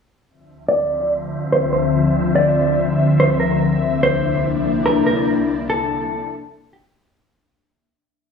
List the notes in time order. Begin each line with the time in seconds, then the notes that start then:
0.27 D2 D3 F3 C4 D4 F4 C5 E5
0.68 D5
1.52 C5
1.73 C5
2.36 D5
3.20 C5
3.40 A#4
3.61 C2 C3 A#3 D4 E4 D5
4.03 C5
4.86 A#4
5.06 A#4
5.70 A4
6.73 G4